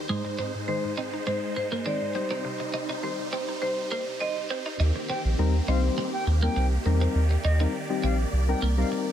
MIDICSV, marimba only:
0, 0, Header, 1, 2, 480
1, 0, Start_track
1, 0, Key_signature, -3, "major"
1, 0, Tempo, 588235
1, 77, Time_signature, 4, 2, 24, 8
1, 7443, End_track
2, 0, Start_track
2, 0, Title_t, "Marimba"
2, 0, Program_c, 0, 12
2, 554, Note_on_c, 0, 72, 90
2, 1026, Note_off_c, 0, 72, 0
2, 1036, Note_on_c, 0, 72, 99
2, 1260, Note_off_c, 0, 72, 0
2, 1277, Note_on_c, 0, 72, 92
2, 1500, Note_off_c, 0, 72, 0
2, 1517, Note_on_c, 0, 74, 98
2, 1964, Note_off_c, 0, 74, 0
2, 2475, Note_on_c, 0, 72, 85
2, 2923, Note_off_c, 0, 72, 0
2, 2952, Note_on_c, 0, 72, 98
2, 3182, Note_off_c, 0, 72, 0
2, 3191, Note_on_c, 0, 72, 93
2, 3431, Note_on_c, 0, 75, 103
2, 3441, Note_off_c, 0, 72, 0
2, 3881, Note_off_c, 0, 75, 0
2, 7443, End_track
0, 0, End_of_file